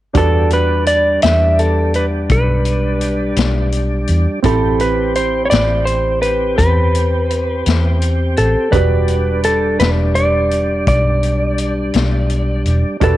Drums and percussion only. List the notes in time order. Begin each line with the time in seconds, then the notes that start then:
0.15 kick, closed hi-hat
0.50 closed hi-hat
0.86 closed hi-hat
1.22 snare, closed hi-hat
1.59 closed hi-hat
1.94 closed hi-hat
2.29 kick, closed hi-hat
2.65 closed hi-hat
3.01 closed hi-hat
3.36 snare, closed hi-hat
3.72 closed hi-hat
4.07 closed hi-hat
4.44 kick, closed hi-hat
4.80 closed hi-hat
5.15 closed hi-hat
5.51 snare, closed hi-hat
5.87 closed hi-hat
6.22 closed hi-hat
6.58 kick, closed hi-hat
6.95 closed hi-hat
7.30 closed hi-hat
7.66 snare, closed hi-hat
8.02 closed hi-hat
8.37 closed hi-hat
8.73 kick, closed hi-hat
9.08 closed hi-hat
9.43 closed hi-hat
9.80 snare, closed hi-hat
10.15 closed hi-hat
10.51 closed hi-hat
10.87 kick, closed hi-hat
11.23 closed hi-hat
11.58 closed hi-hat
11.94 snare, closed hi-hat
12.30 closed hi-hat
12.65 closed hi-hat
13.01 kick, closed hi-hat